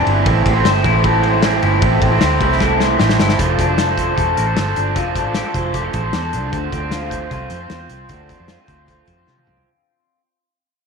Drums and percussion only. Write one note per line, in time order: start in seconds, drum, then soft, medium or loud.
0.07 ride medium
0.26 kick loud
0.26 ride medium
0.46 kick loud
0.46 ride medium
0.65 snare loud
0.65 ride medium
0.84 kick medium
0.84 ride medium
1.04 kick medium
1.04 ride medium
1.23 ride medium
1.42 snare loud
1.42 ride medium
1.63 ride medium
1.82 kick loud
1.82 ride medium
2.02 kick loud
2.02 ride medium
2.21 snare loud
2.21 ride medium
2.41 kick loud
2.41 ride medium
2.60 kick loud
2.60 snare medium
2.80 snare medium
3.00 snare medium
3.10 snare medium
3.20 snare loud
3.29 snare medium
3.39 kick loud
3.39 closed hi-hat medium
3.59 kick medium
3.59 closed hi-hat medium
3.78 snare loud
3.78 closed hi-hat medium
3.98 kick medium
3.98 closed hi-hat medium
4.18 kick medium
4.18 closed hi-hat medium
4.37 closed hi-hat medium
4.57 snare loud
4.57 closed hi-hat medium
4.76 closed hi-hat medium
4.96 kick loud
4.96 closed hi-hat medium
5.16 kick medium
5.16 closed hi-hat medium
5.34 snare loud
5.34 closed hi-hat loud
5.54 kick medium
5.54 closed hi-hat medium
5.74 kick medium
5.74 closed hi-hat medium
5.93 kick medium
5.93 closed hi-hat medium
6.13 snare loud
6.13 closed hi-hat medium
6.33 closed hi-hat medium
6.53 kick loud
6.53 closed hi-hat medium
6.72 kick medium
6.72 closed hi-hat medium
6.91 snare medium
6.91 closed hi-hat loud
7.11 kick medium
7.11 closed hi-hat medium
7.31 kick medium
7.31 closed hi-hat medium
7.50 closed hi-hat medium
7.70 snare loud
7.70 closed hi-hat medium
7.90 closed hi-hat medium
8.09 kick loud
8.09 closed hi-hat medium
8.29 kick medium
8.29 closed hi-hat medium
8.48 snare medium
8.48 closed hi-hat medium
8.68 kick medium
8.68 closed hi-hat medium
8.88 kick medium
8.88 closed hi-hat medium
9.08 kick medium
9.08 closed hi-hat medium
9.27 snare soft
9.38 high tom soft
9.47 mid tom medium
9.57 floor tom medium